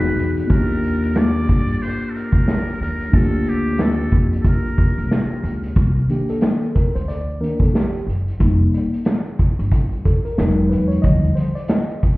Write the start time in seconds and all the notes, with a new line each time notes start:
Already playing: B3 D#4 F#4 G#4 B4
0.16 E2, closed hi-hat
0.37 closed hi-hat
0.47 D#2 A#3 D4 A#4, kick, closed hi-hat
0.51 F4 G4
0.70 closed hi-hat
0.83 closed hi-hat
1.03 closed hi-hat
1.14 D5, snare, closed hi-hat
1.36 closed hi-hat
1.49 G2, kick, closed hi-hat
1.69 closed hi-hat
1.82 C5, closed hi-hat
2.09 A4
2.15 A#4, closed hi-hat
2.32 D2, kick, closed hi-hat
2.48 snare, closed hi-hat
2.68 closed hi-hat
2.80 D#2 A#4, closed hi-hat
3.01 closed hi-hat
3.10 D2 A3 D4 F4, kick, closed hi-hat
3.15 A#3 G4 A4
3.33 closed hi-hat
3.47 G4, closed hi-hat
3.66 closed hi-hat
3.78 A4, snare, closed hi-hat
4.12 F2, kick, closed hi-hat
4.33 closed hi-hat
4.41 A4, kick, closed hi-hat
4.48 A#4
4.65 closed hi-hat
4.78 kick, closed hi-hat
4.98 C2, closed hi-hat
5.11 snare, closed hi-hat
5.31 closed hi-hat
5.44 C#2, closed hi-hat
5.63 closed hi-hat
5.76 C2, kick, closed hi-hat
5.95 closed hi-hat
6.09 D#3 A#3 D4 G4, closed hi-hat
6.29 A4, closed hi-hat
6.41 snare, closed hi-hat
6.62 closed hi-hat
6.75 A#4, kick, closed hi-hat
6.95 D2 C5, closed hi-hat
7.08 D5, closed hi-hat
7.40 D#3 A#3 D4 A#4, closed hi-hat
7.60 A4, kick, closed hi-hat
7.74 G4, snare, closed hi-hat
7.95 closed hi-hat
8.07 F#1, closed hi-hat
8.28 closed hi-hat
8.39 F1 G3 A#3 D#4, kick, closed hi-hat
8.74 closed hi-hat
8.93 closed hi-hat
9.05 snare, closed hi-hat
9.39 kick, closed hi-hat
9.59 G1, closed hi-hat
9.72 kick, closed hi-hat
9.92 closed hi-hat
10.05 A4, kick, closed hi-hat
10.25 A#4, closed hi-hat
10.37 E1 F#3 G#3 D#4, snare, closed hi-hat
10.69 E2 B4, closed hi-hat
10.88 C#5, closed hi-hat
11.02 D#2 D3 F3 G3 D#5, kick, closed hi-hat
11.23 closed hi-hat
11.35 C5, closed hi-hat
11.55 D5, closed hi-hat
11.68 D#5, snare, closed hi-hat
11.89 closed hi-hat
12.03 kick, closed hi-hat